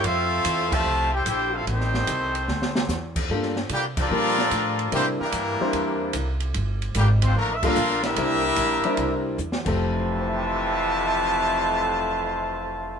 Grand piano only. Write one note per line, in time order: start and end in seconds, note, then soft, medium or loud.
3.31 3.54 G3 medium
3.31 3.55 A#3 medium
3.31 3.55 D4 medium
3.31 3.55 F4 medium
3.31 3.55 A4 medium
4.11 4.35 G3 medium
4.11 4.35 A#3 medium
4.11 4.36 D4 medium
4.11 4.36 F4 medium
4.11 4.36 A#4 medium
4.92 5.16 G3 medium
4.92 5.16 C4 medium
4.92 5.17 D4 medium
4.92 5.17 E4 medium
4.92 5.17 A#4 medium
5.61 6.11 G3 medium
5.61 6.12 C4 medium
5.61 6.12 D4 medium
5.61 6.12 E4 medium
5.61 6.12 C5 medium
7.63 7.75 G3 medium
7.63 7.75 A#3 medium
7.63 7.75 D4 medium
7.63 7.75 F4 medium
7.63 7.75 A4 medium
8.17 8.42 G3 medium
8.17 8.42 C4 medium
8.17 8.42 D4 medium
8.17 8.42 E4 medium
8.17 8.42 A#4 medium
8.85 9.36 G3 medium
8.85 9.36 C4 medium
8.85 9.36 D4 medium
8.85 9.36 E4 medium
8.85 9.36 A#4 medium
9.65 13.00 F2 medium
9.65 13.00 C3 medium
9.65 13.00 C4 medium
9.65 13.00 G4 medium
9.65 13.00 A4 medium
10.21 13.00 C5 soft
10.28 13.00 E5 soft
10.37 13.00 G5 soft
10.46 13.00 C6 soft
10.56 13.00 E6 soft
10.66 13.00 G6 soft
10.78 13.00 C7 soft